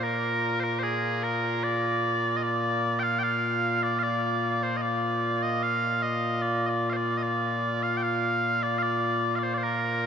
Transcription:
Already playing: A#2 A#3 F4
0.03 A#4
0.60 A#4 C5
0.79 G#4 C5
1.23 A#4
1.64 D5
2.37 D#5
2.43 D5
2.99 F5 G5
3.19 G5
3.23 F5
3.83 D5
3.99 F5
4.03 D5
4.63 C5
4.77 D#5
4.82 D5
5.43 D#5
5.63 F5
6.02 D#5
6.42 D5
6.66 D5 D#5
6.90 C5 F5
6.96 D5
7.17 D#5
7.23 D5
7.83 F5
7.97 G5
8.03 F5
8.63 D5
8.78 F5
8.82 D5
9.35 D5 F5
9.43 C5
9.54 C5 D5
9.63 A#4

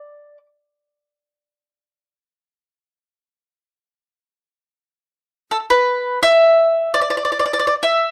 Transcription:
Already playing: D5
5.51 A4
5.70 B4
6.23 E5
6.94 D5
7.01 D5
7.10 D5
7.17 D5
7.25 D5
7.32 D5
7.39 D5
7.46 D5
7.53 D5
7.59 D5
7.67 D5
7.83 E5

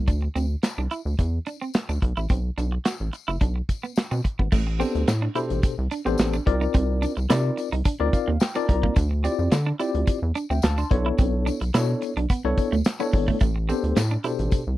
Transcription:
0.07 D2 D4, kick, closed hi-hat, tambourine
0.22 muted clean electric guitar stroke
0.35 D2 C4, closed hi-hat, tambourine
0.63 muted clean electric guitar stroke, snare, clap, closed hi-hat, tambourine
0.78 C2 D4
0.91 E4, closed hi-hat, tambourine
1.05 D2, tambourine
1.19 E2, muted clean electric guitar stroke, kick, closed hi-hat, tambourine
1.46 D4, closed hi-hat, tambourine
1.61 C4, tambourine
1.74 snare, clap, closed hi-hat, tambourine
1.89 D2 D4, tambourine
2.02 B1, muted clean electric guitar stroke, kick, closed hi-hat
2.17 A1 E4, tambourine
2.29 B1 C4, kick, closed hi-hat, tambourine
2.58 B1 D4, closed hi-hat, tambourine
2.72 muted clean electric guitar stroke
2.85 F#4, snare, clap, closed hi-hat, tambourine
3.00 A1
3.13 muted clean electric guitar stroke, closed hi-hat, tambourine
3.28 F#1 E4, tambourine
3.41 B1 D4, kick, closed hi-hat, tambourine
3.56 muted clean electric guitar stroke
3.69 kick, closed hi-hat, tambourine
3.83 B3, tambourine
3.96 snare, clap, closed hi-hat, tambourine
4.11 B2 C4, tambourine
4.24 muted clean electric guitar stroke, kick, closed hi-hat
4.39 G#1 B3, kick
4.52 A1 A3, kick, crash, tambourine
4.67 muted clean electric guitar stroke
4.79 B3 C4 D4 G4 A4 C5, closed hi-hat, tambourine
4.95 D2, closed hi-hat, tambourine
5.07 A2, muted clean electric guitar stroke, snare, clap, closed hi-hat, tambourine
5.22 D4
5.35 B2 D4 E4 G4 A4 C5, closed hi-hat, tambourine
5.50 A1, closed hi-hat, tambourine
5.63 muted clean electric guitar stroke, kick, closed hi-hat, tambourine
5.78 C2
5.91 D4, closed hi-hat, tambourine
6.05 A1 B3 C4 D4 G4 A4 C5, tambourine
6.18 A1, snare, clap, closed hi-hat, tambourine
6.33 D4, tambourine
6.46 C2 C4 D#4 F4 A#4 D5, muted clean electric guitar stroke, kick, closed hi-hat
6.61 D#4, tambourine
6.74 C2 C4, kick, closed hi-hat, tambourine
7.02 D4, closed hi-hat, tambourine
7.17 C2, muted clean electric guitar stroke, tambourine
7.29 C3 C4 D#4 E4 F4 A#4 D5, snare, clap, closed hi-hat, tambourine
7.57 muted clean electric guitar stroke, closed hi-hat, tambourine
7.72 C2 D#4, closed hi-hat
7.85 D4, kick, closed hi-hat, tambourine
8.00 D2 C4 D#4 F4 A#4 D5, muted clean electric guitar stroke
8.13 F5, kick, closed hi-hat, tambourine
8.28 D#2 A#3
8.40 G5, snare, clap, closed hi-hat, tambourine
8.55 C4 D#4 F4 A#4 D5 A5, tambourine
8.69 C2 A#5, muted clean electric guitar stroke, kick, closed hi-hat
8.83 A#3, kick
8.96 D2 D4, kick, closed hi-hat, tambourine
9.11 muted clean electric guitar stroke
9.24 C4 E4 F4 G4 D5, closed hi-hat, tambourine
9.39 F2, tambourine
9.51 D3, muted clean electric guitar stroke, snare, clap, closed hi-hat, tambourine
9.66 D4
9.79 C4 E4 F4 G4 D5, closed hi-hat, tambourine
9.95 D2, closed hi-hat
10.07 muted clean electric guitar stroke, kick, closed hi-hat, tambourine
10.22 E2
10.35 D4, closed hi-hat, tambourine
10.50 D2 C4 E5 G5, tambourine
10.62 D2 F5 A5, snare, clap, closed hi-hat, tambourine
10.78 D4 A5 C6, tambourine
10.91 B1 B3 D4 E4 A4 C#5, muted clean electric guitar stroke, kick, closed hi-hat
11.06 E4
11.18 B1 C4, kick, closed hi-hat, tambourine
11.46 D4, closed hi-hat, tambourine
11.61 B1, muted clean electric guitar stroke, closed hi-hat, tambourine
11.74 B2 B3 D4 E4 A4 C#5, snare, clap, closed hi-hat, tambourine
12.02 muted clean electric guitar stroke, closed hi-hat, tambourine
12.17 B1 D4, closed hi-hat
12.30 B3, kick, closed hi-hat, tambourine
12.44 C2 B3 D4 E4 A4 C#5, muted clean electric guitar stroke
12.57 kick, closed hi-hat, tambourine
12.72 D2 A3, tambourine
12.85 snare, clap, closed hi-hat, tambourine
13.00 B3 D4 E4 A4 C#5, tambourine
13.13 G#1, muted clean electric guitar stroke, kick, open hi-hat
13.28 A3, kick
13.40 A1 A3, kick, closed hi-hat, tambourine
13.56 muted clean electric guitar stroke
13.68 B3 C4 D4 G4 A4 C5, closed hi-hat, tambourine
13.83 D2, closed hi-hat
13.96 A2, muted clean electric guitar stroke, snare, clap, closed hi-hat, tambourine
14.11 D4
14.24 B2 D4 E4 G4 A4 C5, closed hi-hat, tambourine
14.39 A1, closed hi-hat, tambourine
14.51 muted clean electric guitar stroke, kick, closed hi-hat, tambourine
14.67 C2

